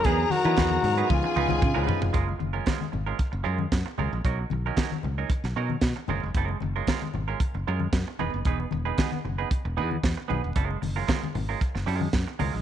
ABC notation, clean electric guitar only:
X:1
M:4/4
L:1/16
Q:1/4=114
K:F#
V:1 name="Clean electric guitar"
[B,DGB] z2 [B,DGB] [B,DGB] z2 [B,DGB] z2 [G,DEB] z2 [G,DEB] [G,DEB] z | [G,CEA] z2 [G,CEA] [G,CEA] z2 [G,CEA] z2 [G,CEA] z3 [G,CEA] z | [F,CDA] z2 [F,CDA] [F,CDA] z2 [F,CDA] z2 [F,CDA] z3 [G,CEA] z | [G,CEA]2 z [G,CEA] [G,CEA] z2 [G,CEA] z2 [G,CEA] z3 [B,DGB] z |
[B,DGB] z2 [B,DGB] [B,DGB] z2 [B,DGB] z2 [B,DGB] z3 [B,DGB] z | [G,CEA]2 z [G,CEA] [G,CEA] z2 [G,CEA] z2 [G,CEA]2 z2 [G,CEA] z |]